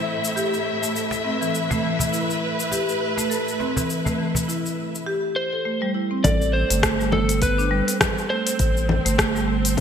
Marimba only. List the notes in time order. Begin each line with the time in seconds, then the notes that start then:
Already playing: E4
0.36 G4
0.82 A3
0.95 A4
1.24 C4
1.41 E3
1.70 A3
1.83 E3
2.12 E4
2.71 G4
3.17 A3
3.30 A4
3.60 C4
3.76 E3
4.06 A3
4.18 E3
4.48 E4
5.06 G4
5.53 A4
5.65 A3
5.82 G3
5.94 E4
6.11 C4
6.70 A3
6.83 A3
7.00 G3
7.12 A3
7.42 B3
7.58 D4
7.71 G3
8.30 A3
9.05 A3
9.18 A3
9.35 G3
9.48 A3
9.77 B3